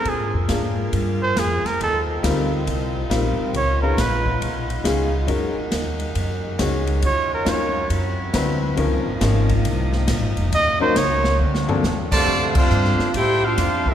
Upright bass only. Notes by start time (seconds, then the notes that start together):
0.05 A#2
0.20 G#2
0.34 F2
0.49 G#2
0.93 G2
1.36 F2
1.64 muted upright bass stroke
1.80 D#2
2.23 D2
2.67 C2
3.10 A#1
3.39 muted upright bass stroke
3.53 C#2
3.97 A#1
4.41 B1
4.84 C#2
5.27 F#2
5.56 muted upright bass stroke
5.71 D#2
6.15 F#2
6.59 C#2
7.02 D#2
7.46 F2
7.90 F#2
8.34 D2
8.77 C#2
8.91 C2
9.05 G#1
9.21 G#1
9.64 C2
10.08 A#1
10.22 G#1
10.37 F1
10.52 D#2
10.95 C#2
11.39 D2
11.83 E2
12.27 F2
12.70 G2
12.99 muted upright bass stroke
13.14 A2
13.57 F2